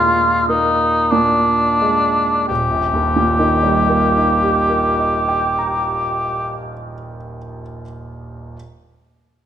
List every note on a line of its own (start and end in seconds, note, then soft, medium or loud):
0.00 2.46 D#2 soft
0.00 0.86 A#2 soft
0.00 0.24 G#3 soft
0.00 0.47 F4 medium
0.48 1.53 A#3 soft
0.48 1.12 D#4 soft
1.11 2.23 A#2 soft
1.11 2.47 D4 medium
1.82 2.50 G#3 soft
2.48 6.72 D#1 soft
2.48 6.70 G4 soft
2.71 6.93 A#1 soft
2.93 7.16 D#2 soft
3.16 7.38 A#2 soft
3.39 7.61 D#3 soft
3.63 7.82 G3 soft
3.89 7.82 A#3 soft
4.16 7.82 D#4 soft
4.43 7.82 G4 soft
4.70 7.81 A#4 soft
4.99 7.82 D#5 soft
5.29 7.82 G5 soft
5.59 7.82 A#5 soft